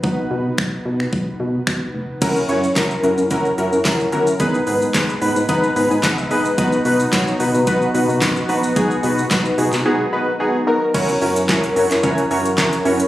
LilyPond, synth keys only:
\new Staff \with { instrumentName = "Synth keys" } { \time 4/4 \key b \major \tempo 4 = 110 << { r1 | r1 | r4. b''8 ais''8. gis''16 fis''16 e''16 dis''8 | r1 |
r1 | r1 | } \\ { <b dis' fis' b'>1 | <cis' e' fis' ais'>8 <cis' e' fis' cis''>8 <cis' e' fis' ais'>8 <cis' e' fis' ais'>8 <cis' e' fis' ais'>8 <cis' e' fis' ais'>8 <cis' e' fis' ais'>8 <cis' e' fis' ais'>8 | <b dis' gis' b'>8 <b dis' gis' b'>8 <b dis' gis' b'>8 <b dis' gis' b'>8 <b dis' gis' b'>8 <b dis' gis' b'>8 <b dis' gis' b'>8 <b dis' gis' b'>8 | <b dis' fis' b'>8 <b dis' fis' b'>8 <b dis' fis' cis''>8 <b dis' fis' b'>8 <b dis' fis' b'>8 <b dis' fis' b'>8 <b dis' fis' b'>8 <b dis' fis' b'>8 |
<b dis' fis' gis'>8 <b dis' fis' b'>8 <b dis' fis' b'>8 <b dis' fis' gis'>8 <b dis' fis' gis'>8 <b dis' fis' b'>8 <b dis' fis' gis'>8 <b dis' fis' ais'>8 | <cis' e' fis' ais' cis''>8 <cis' e' fis' ais' cis''>8 <cis' e' fis' ais' cis''>8 <cis' e' fis' ais' cis''>8 <cis' e' fis' ais' cis''>8 <cis' e' fis' ais' cis''>8 <cis' e' fis' ais' cis''>8 <cis' e' fis' ais' cis''>8 | } >> }